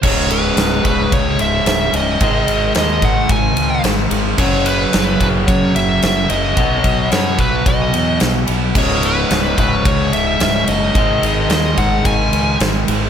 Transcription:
<<
  \new Staff \with { instrumentName = "Lead electric guitar" } { \time 4/4 \key gis \phrygian \tempo 4 = 110 cis''8 b'4 b'8 cis''8 e''8 e''8 dis''8~ | dis''4 dis''8 fis''8 gis''4 r4 | cis''8 b'4 b'8 cis''8 e''8 e''8 dis''8~ | dis''4 cis''8 b'8 dis''4 r4 |
cis''8 b'4 b'8 cis''8 e''8 e''8 dis''8~ | dis''4 dis''8 fis''8 gis''4 r4 | }
  \new Staff \with { instrumentName = "Overdriven electric guitar" } { \clef bass \time 4/4 \key gis \phrygian <cis, gis, cis>1 | <gis, dis gis>1 | <fis, cis fis>1 | <b, fis b>1 |
<cis, gis, cis>1 | <gis, dis gis>1 | }
  \new Staff \with { instrumentName = "Overdriven electric guitar" } { \clef bass \time 4/4 \key gis \phrygian <cis, gis, cis>2.~ <cis, gis, cis>8 <cis, gis, cis>8 | <gis, dis gis>2.~ <gis, dis gis>8 <gis, dis gis>8 | <fis, cis fis>2.~ <fis, cis fis>8 <fis, cis fis>8 | <b, fis b>2.~ <b, fis b>8 <b, fis b>8 |
<cis, gis, cis>2.~ <cis, gis, cis>8 <cis, gis, cis>8 | <gis, dis gis>2.~ <gis, dis gis>8 <gis, dis gis>8 | }
  \new Staff \with { instrumentName = "Overdriven electric guitar" } { \clef bass \time 4/4 \key gis \phrygian <cis, gis, cis>4. <cis, gis, cis>2~ <cis, gis, cis>8 | <gis, dis gis>4. <gis, dis gis>2~ <gis, dis gis>8 | <fis, cis fis>4. <fis, cis fis>2~ <fis, cis fis>8 | <b, fis b>4. <b, fis b>2~ <b, fis b>8 |
<cis, gis, cis>4. <cis, gis, cis>2~ <cis, gis, cis>8 | <gis, dis gis>4. <gis, dis gis>2~ <gis, dis gis>8 | }
  \new Staff \with { instrumentName = "Fingered electric bass" } { \clef bass \time 4/4 \key gis \phrygian cis,,4 cis,,8 cis,,8 cis,8 cis,,8 cis,,8 cis,,8 | gis,,8 gis,,8 dis,8 gis,,8 gis,,8 cis,8 gis,,8 gis,,8 | fis,,4 fis,,8 fis,,8 fis,8 fis,,8 fis,,8 fis,,8 | b,,8 b,,8 fis,8 b,,8 b,,8 e,8 b,,8 b,,8 |
cis,,4 cis,,8 cis,,8 cis,8 cis,,8 cis,,8 fis,,8 | gis,,8 gis,,8 dis,8 gis,,8 gis,,8 cis,8 gis,,8 gis,,8 | }
  \new DrumStaff \with { instrumentName = "Drums" } \drummode { \time 4/4 <cymc bd>8 cymr8 <cymr sn>8 <bd cymr>8 <bd cymr>8 cymr8 <cymr sn>8 cymr8 | <bd cymr>8 cymr8 <cymr sn>8 <bd cymr>8 <bd cymr>8 cymr8 <cymr sn>8 cymr8 | <cymc bd>8 cymr8 <cymr sn>8 <bd cymr>8 <bd cymr>8 cymr8 <cymr sn>8 cymr8 | <bd cymr>8 <bd cymr>8 <cymr sn>8 <bd cymr>8 <bd cymr>8 cymr8 <cymr sn>8 cymr8 |
<cymc bd>8 cymr8 <cymr sn>8 <bd cymr>8 <bd cymr>8 cymr8 <cymr sn>8 cymr8 | <bd cymr>8 cymr8 <cymr sn>8 <bd cymr>8 <bd cymr>8 cymr8 <cymr sn>8 cymr8 | }
>>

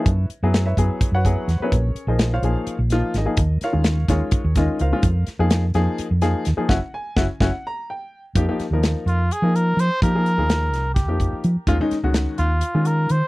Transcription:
<<
  \new Staff \with { instrumentName = "Muted trumpet" } { \time 7/8 \key ges \lydian \tempo 4 = 127 r2. r8 | r2. r8 | r2. r8 | r2. r8 |
r2. r8 | \key f \minor r4. f'8 aes'8 bes'8 c''8 | bes'2 g'4 r8 | r4. f'4 bes'8 c''8 | }
  \new Staff \with { instrumentName = "Grand piano" } { \time 7/8 \key ges \lydian << { <e' ces'' des'' e''>8 r8. <fes' ces'' des'' fes''>4 <ges' ces'' des'' ges''>4 <des' aes' bes' c'' des''>16~ | <des' aes' bes' c'' des''>8. <bes' c'' ees''>8 <f' c'' des'' f''>4 r8. <ees' aes' bes' ees''>8~ | <ees' aes' bes' ees''>8 <f' bes' des'' f''>4 <aes' bes' des''>4 <ees' aes' bes' ees''>8 <f' bes' c'' f''>8~ | <f' bes' c'' f''>8 r2. |
ges''8 aes''4 ges''8 bes''8 g''8. r16 | \key f \minor r2. r8 | r2. r8 | r2. r8 | } \\ { r8. <ges ces' fes' aes'>8 r16 <ges ces' fes' aes'>8. r16 <ges ces' fes' aes'>8 r16 <ges ces' fes' ces''>16 | r8. <f bes ees' aes'>8 r16 <f bes ees' aes'>8. r16 <f bes ees' f'>8 r16 <f bes ees' aes'>16 | r8. <ees aes des' f'>8 r16 <ees aes des' f'>8. r16 <ees aes des' f'>8 r16 <ees aes des' f'>16 | r8. <f bes ees' aes'>8 r16 <f bes ees' aes'>8. r16 <f bes ees' aes'>8 r16 <f bes ees' aes'>16 |
<des' e' ges'>8 r8 <des' e' ges'>8 <des' e' ges'>8 r4. | <f bes ees' g'>16 <f bes ees' g'>16 r16 <f bes ees' bes'>4 r8 <f bes ees' bes'>8. r8 | <f bes ees' g'>16 <f bes ees' aes'>16 r16 <f bes ees' aes'>4 r8 <f bes ees' g'>8. r8 | <ees aes des' f'>16 <ees aes des' ees'>16 r16 <ees aes des' ges'>4 r8 <ees aes des' f'>8. r8 | } >> }
  \new Staff \with { instrumentName = "Fingered electric bass" } { \clef bass \time 7/8 \key ges \lydian ges,8 r16 ges,8. ges,16 r8 ges,8 r16 fes,16 r16 | bes,,8 r16 bes,,8. bes,,16 r8 bes,,8 r16 aes,,16 r16 | ees,8 r16 ees,8. ees,16 r8 ees,8 r16 des,16 r16 | f,8 r16 f,8. f,16 r8 f,8 r16 ees,16 r16 |
ges,,16 r8. ges,,16 r16 ges,,16 r4. r16 | \key f \minor f,16 r8 ees,8 r16 f,8 r16 f8. f16 r16 | f8. ees,8. c,8. f,8 r16 f16 r16 | ees,16 r8 des,8 r16 ees,8 r16 ees8. ees16 r16 | }
  \new DrumStaff \with { instrumentName = "Drums" } \drummode { \time 7/8 <hh bd>8 hh8 <hh sn>8 <hh bd>8 <hh bd>8 <hh bd>8 <hh sn>8 | <hh bd>8 hh8 <hh sn>8 hh8 hh8 <hh sn>8 <hh sn>8 | <hh bd>8 <hh sn>8 <hh sn>8 <hh bd sn>8 <hh bd>8 <hh bd sn>8 hh8 | <hh bd>8 <hh sn>8 <hh sn>8 <hh sn>8 hh8 <hh sn>8 <hh sn>8 |
<bd sn>4 <bd sn>8 <bd sn>8 r4. | <hh bd>8 <hh sn>8 <hh sn>8 hh8 hh8 hh8 hh8 | <hh bd>8 hh8 <hh sn>8 <hh sn>8 <hh bd sn>8 <hh bd>8 hh8 | <hh bd>8 <hh sn>8 <hh sn>8 hh8 hh8 hh8 hh8 | }
>>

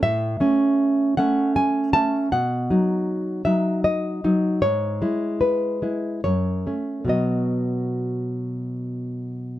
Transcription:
\new Staff \with { instrumentName = "Nylon-string guitar" } { \time 3/4 \key b \mixolydian \tempo 4 = 77 << { e''4. fis''8 gis''8 a''8 | fis''4. e''8 dis''4 | cis''4 b'4 cis''4 | dis''2 r4 | } \\ { a,8 <a cis'>4 <a cis'>4 <a cis'>8 | b,8 <fis dis'>4 <fis dis'>4 <fis dis'>8 | gis,8 <gis e'>4 <gis e'>8 fis,8 <a cis'>8 | <b, fis b>2. | } >> }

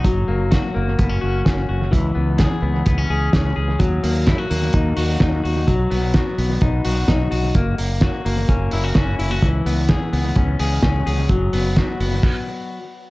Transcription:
<<
  \new Staff \with { instrumentName = "Clean electric guitar" } { \time 4/4 \key fis \mixolydian \tempo 4 = 128 fis8 ais8 fis'8 ais8 b16 cis'16 fis'8 cis'8 fis'8 | e8 b8 gis'8 b8 b16 cis'16 gis'8 cis'8 gis'8 | fis8 ais8 e'16 fis'16 ais8 dis'8 fis'8 dis'8 fis'8 | fis8 b8 fis'8 b8 dis'8 fis'8 dis'8 fis'8 |
ais8 ais8 fis'8 ais8 cis'8 e'16 fis'16 cis'8 e'16 fis'16 | e8 b8 gis'8 b8 cis'8 gis'8 cis'8 gis'8 | fis8 b8 fis'8 b8 r2 | }
  \new Staff \with { instrumentName = "Fretless electric bass" } { \clef bass \time 4/4 \key fis \mixolydian fis,,8 fis,,8. r16 fis,,8 fis,,8 fis,,8 r8 fis,,8 | cis,8 cis,8. r16 cis,8 cis,8 cis,8 cis,8 cis,8 | dis,8 dis,8. r16 dis,8 dis,8 dis,8 dis,8 dis,8 | b,,8 b,,8. r16 b,,8 b,,8 b,,8 b,,8 b,,8 |
fis,,8 fis,,8. r16 fis,,8 fis,,8 fis,,8 fis,,8 fis,,8 | cis,8 cis,8. r16 cis,8 cis,8 cis,8 cis,8 cis,8 | fis,,8 fis,,8. r16 fis,,8 r2 | }
  \new DrumStaff \with { instrumentName = "Drums" } \drummode { \time 4/4 <hh bd>4 <hh bd sn>4 <hh bd>4 <hh bd sn>4 | <hh bd>4 <hh bd sn>4 <hh bd>4 <hh bd sn>4 | <hh bd>8 hho8 <hh bd sn>8 hho8 <hh bd>8 hho8 <hh bd sn>8 hho8 | <hh bd>8 hho8 <hh bd sn>8 hho8 <hh bd>8 hho8 <hh bd sn>8 hho8 |
<hh bd>8 hho8 <hh bd sn>8 hho8 <hh bd>8 hho8 <hh bd sn>8 hho8 | <hh bd>8 hho8 <hh bd sn>8 hho8 <hh bd>8 hho8 <hh bd sn>8 hho8 | <hh bd>8 hho8 <hh bd sn>8 hho8 <cymc bd>4 r4 | }
>>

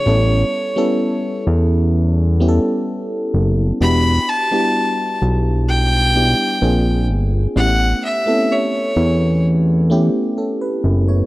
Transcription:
<<
  \new Staff \with { instrumentName = "Fiddle" } { \time 4/4 \key a \mixolydian \tempo 4 = 64 cis''4. r2 r8 | b''8 a''4 r8 g''4. r8 | fis''8 e''8 cis''4 r2 | }
  \new Staff \with { instrumentName = "FM electric piano" } { \time 4/4 \key a \mixolydian << { r1 | r1 | r2. <cis' a'>16 b'8 <e' cis''>16 | } \\ { <g b cis' e' a'>8. <g b cis' e' a'>4. r16 <g b cis' e' g' a'>4~ <g b cis' e' g' a'>16 r16 | <b d' e' fis' g'>8. <g b d' e' g'>4. r16 <g b d' e' g'>8 <ais bis d' eis' gis'>4 | <a b cis' e' g'>8. <a b c' cis' e' a'>4. r16 <a b cis' e' g'>4~ <a b cis' e' g'>16 r16 | } >> }
  \new Staff \with { instrumentName = "Analog synth bass" } { \clef bass \time 4/4 \key a \mixolydian a,,8 r4 e,4~ e,16 r8. fis,,8 | e,,8 r4 b,,4~ b,,16 r16 ais,,8 g,,8 | a,,8 r4 e,4~ e,16 r8. fis,,8 | }
>>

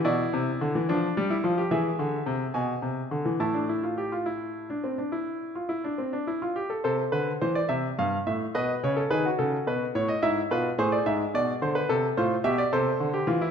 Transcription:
<<
  \new Staff \with { instrumentName = "Grand piano" } { \time 12/8 \key a \minor \tempo 4. = 72 << { d''2. e''4. gis''4. | a''1~ a''4. r8 | a'8 b'8 c''16 d''16 e''8 f''8 e''8 dis''8 cis''8 b'8 a'8 b'8 cis''16 dis''16 | e''8 b'8 c''16 d''16 e''8 d''8 c''16 b'16 r8 c''8 e''16 d''16 c''4. | } \\ { e'4. d'8. e'16 f'16 g'16 gis'2. | e'16 d'16 e'16 f'16 g'16 f'16 e'8. d'16 c'16 d'16 e'8. f'16 e'16 d'16 c'16 d'16 e'16 f'16 g'16 a'16 | c''2. b'8. a'16 gis'16 fis'4.~ fis'16 | e'8 f'8 gis'2 a'8 f'8 g'8 a'8. g'16 f'16 e'16 | } >> }
  \new Staff \with { instrumentName = "Grand piano" } { \clef bass \time 12/8 \key a \minor b,8 c8 d16 e16 f8 g8 f8 e8 d8 c8 b,8 c8 d16 e16 | a,1~ a,4. r8 | c8 d8 e8 c8 g,8 a,8 b,8 cis8 dis8 cis8 b,8 a,8 | gis,8 b,8 a,8 gis,8 b,8 d8 c8 a,8 b,8 c8 d8 e8 | }
>>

